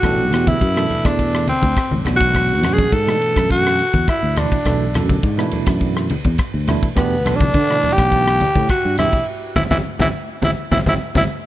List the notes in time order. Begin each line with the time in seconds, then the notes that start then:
Already playing: F#4
0.02 A1 B2 E3 A3 D4 A4, kick, cross-stick, ride, low conga
0.31 E2 B2 E3 A3 D4 G4, cross-stick, ride
0.47 E4, kick, ride, high conga
0.61 F#2, kick, ride
0.76 B2 E3 A3 D4 A4, cross-stick
0.90 ride, low conga
1.05 E2 D4, kick, cross-stick, ride
1.19 kick, ride
1.35 cross-stick
1.47 C4, ride, high conga
1.62 D2, kick, ride, high conga
1.76 kick, cross-stick, ride
1.91 A1, high conga
2.05 B1 B2 E3 A3 D4 F#4, cross-stick, ride, low conga
2.16 F#4
2.21 kick, ride
2.34 kick, cross-stick, ride, low conga
2.62 F#2 B2 E3 A3 D4 F#4, cross-stick, ride, low conga
2.74 G#4
2.78 kick, ride, high conga
2.92 G#2 A4, kick, ride
3.06 B2 E3 A3 D4 A4, cross-stick
3.22 ride
3.36 F#2, kick, cross-stick, ride
3.50 F#4, kick, ride
3.67 cross-stick
3.79 ride
3.93 E2, kick, ride, high conga
4.08 E4, kick, cross-stick, ride
4.23 D2
4.36 B2 E3 A3 D4 E4, cross-stick, ride, low conga
4.52 kick, ride
4.65 B1 B2 E3 A3 D4 A4, kick, cross-stick, ride, low conga
4.94 F#2 B2 E3 A3 D4 A4, cross-stick, ride, low conga
5.09 kick, ride, high conga
5.23 G#2, kick, ride
5.38 B2 E3 A3 D4 E4, cross-stick
5.51 ride, low conga
5.66 F#2, kick, cross-stick, ride
5.80 kick, ride
5.97 cross-stick
6.10 ride, high conga
6.24 E2, kick, ride, high conga
6.38 kick, cross-stick, ride
6.54 D2
6.67 B2 E3 A3 D4 E4, cross-stick, ride, low conga
6.83 kick, ride
6.95 E2 B2 E3 A3 B3 D4 G4, kick, cross-stick, ride, low conga
7.25 B1 B2 E3 A3 D4 A4, cross-stick, ride, low conga
7.36 D4
7.40 kick, ride, high conga
7.54 D3, kick, ride
7.70 B2 E3 A3 D4 E4, cross-stick
7.83 ride, low conga
7.93 G4
7.98 B1, kick, cross-stick, ride
8.12 kick, ride
8.28 cross-stick
8.40 ride, high conga
8.55 A2, kick, ride, high conga
8.69 F#4, kick, cross-stick, ride
8.85 G2
8.98 B2 E3 A3 D4 E4 G4, cross-stick, ride, low conga
9.13 muted fretless electric bass stroke, kick, ride
9.56 G#1 F#3 G#3 C4 E4, kick, snare, high conga
9.71 G#1 F#3 G#3 C4 E4, kick, snare, high conga
9.99 G#1 F#3 G#3 C4 E4, kick, snare, high conga
10.42 G#1 F#3 G#3 C4 E4, kick, snare, high conga
10.71 G#1 F#3 G#3 C4 E4, kick, snare, high conga
10.86 G#1 F#3 G#3 C4 E4, kick, snare, high conga
11.15 G#1 F#3 G#3 C4 E4, kick, snare, high conga